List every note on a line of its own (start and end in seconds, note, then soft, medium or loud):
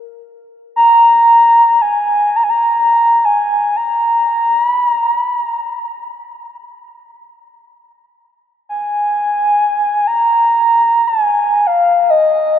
0.76 1.83 A#5 loud
1.81 2.37 G#5 medium
2.36 2.45 A#5 loud
2.43 2.51 G#5 medium
2.49 3.26 A#5 loud
3.25 3.78 G#5 medium
3.76 4.65 A#5 medium
4.65 4.90 B5 medium
4.90 5.16 A#5 medium
5.16 5.40 B5 medium
5.40 6.29 A#5 medium
8.69 10.09 G#5 loud
10.07 11.09 A#5 loud
11.07 11.68 G#5 medium
11.67 12.11 F5 medium
12.10 12.59 D#5 medium